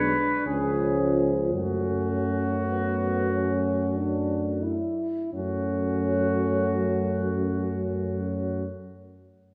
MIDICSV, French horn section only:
0, 0, Header, 1, 2, 480
1, 0, Start_track
1, 0, Key_signature, 3, "minor"
1, 0, Tempo, 1039861
1, 703, Time_signature, 3, 2, 24, 8
1, 703, Tempo, 1167315
1, 1183, Tempo, 1260504
1, 1663, Tempo, 1385681
1, 3600, End_track
2, 0, Start_track
2, 0, Title_t, "French horn section"
2, 0, Program_c, 0, 60
2, 0, Note_on_c, 0, 62, 55
2, 212, Note_on_c, 0, 61, 54
2, 216, Note_off_c, 0, 62, 0
2, 625, Note_off_c, 0, 61, 0
2, 704, Note_on_c, 0, 61, 47
2, 1125, Note_off_c, 0, 61, 0
2, 1180, Note_on_c, 0, 59, 49
2, 1402, Note_off_c, 0, 59, 0
2, 1419, Note_on_c, 0, 61, 41
2, 1662, Note_on_c, 0, 62, 53
2, 1663, Note_off_c, 0, 61, 0
2, 1897, Note_off_c, 0, 62, 0
2, 1897, Note_on_c, 0, 64, 44
2, 2138, Note_off_c, 0, 64, 0
2, 2142, Note_on_c, 0, 61, 47
2, 3286, Note_off_c, 0, 61, 0
2, 3600, End_track
0, 0, End_of_file